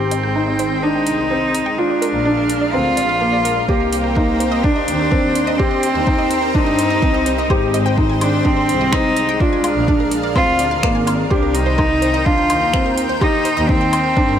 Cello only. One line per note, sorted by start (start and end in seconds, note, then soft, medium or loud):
0.00 0.84 C4 medium
0.83 1.79 D#4 medium
1.78 2.74 D4 loud
2.72 3.67 F4 loud
3.68 4.64 A#3 loud
4.63 5.59 D4 loud
5.58 6.55 C4 medium
6.54 7.50 D#4 loud
8.21 8.46 D4 medium
8.44 8.93 C4 medium
8.92 9.41 D#4 loud
9.40 10.12 D4 medium
10.36 10.80 F4 loud
11.30 11.56 D4 medium
11.54 12.26 D#4 loud
12.24 12.97 F4 loud
13.21 13.71 D#4 loud
13.69 14.39 C4 loud